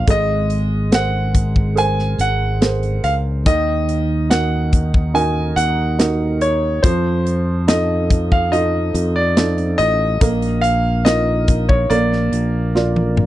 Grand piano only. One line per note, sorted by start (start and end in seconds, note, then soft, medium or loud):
0.10 0.96 D#5 medium
0.94 1.74 F#5 medium
1.78 2.21 G#5 medium
2.21 3.07 F#5 medium
3.04 3.13 F5 medium
3.46 4.26 D#5 medium
4.30 5.17 F#5 medium
5.15 5.54 G#5 medium
5.56 6.44 F#5 medium
6.42 6.85 C#5 medium
6.83 7.64 C5 medium
7.68 8.27 D#5 medium
8.32 8.53 F5 medium
8.52 9.12 D#5 medium
9.16 9.81 D5 medium
9.78 10.59 D#5 medium
10.61 11.06 F5 medium
11.05 11.71 D#5 medium
11.69 11.91 C#5 medium
11.90 13.13 D5 medium